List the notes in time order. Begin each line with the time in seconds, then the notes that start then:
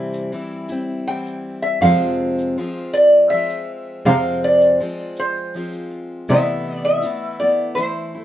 Already playing: C3 E3 G3 C4 E4
0.13 shaker
0.32 E3 G3 C4 E4
0.52 shaker
0.69 G3 C4 E4, shaker
1.08 E3 G3 C4 E4 G5
1.26 shaker
1.62 E5, shaker
1.81 F2 C3 F3 G#3 C4 F4 F5, shaker
2.39 shaker
2.58 F3 G#3 C4 F4
2.76 shaker
2.94 D5, shaker
3.30 F3 G#3 C4 E5
3.34 F4
3.50 shaker
4.06 F2 C3 F3 G#3 C4 F4 F5, shaker
4.44 D5
4.61 shaker
4.79 F3 G#3 C4 F4, shaker
5.16 C5, shaker
5.36 shaker
5.54 F3 G#3 C4 F4, shaker
5.72 shaker
5.91 shaker
6.29 C3 E3 A3 B3 E4 E5, shaker
6.84 E5, shaker
7.02 E3 A3 B3 E4, shaker
7.40 A3 B3 E4 D5
7.75 E3 A3 C5, shaker
7.79 E4
8.15 A3 E4